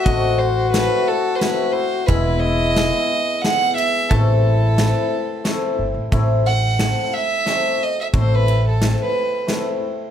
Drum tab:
RD |x-x-x-|x-x-xx|x-x-x-|x-x-x-|
SD |--o-o-|--o-o-|--o-o-|--o-o-|
BD |o-----|o-----|o-----|o-----|

RD |xxx-x-|
SD |--o-o-|
BD |o-----|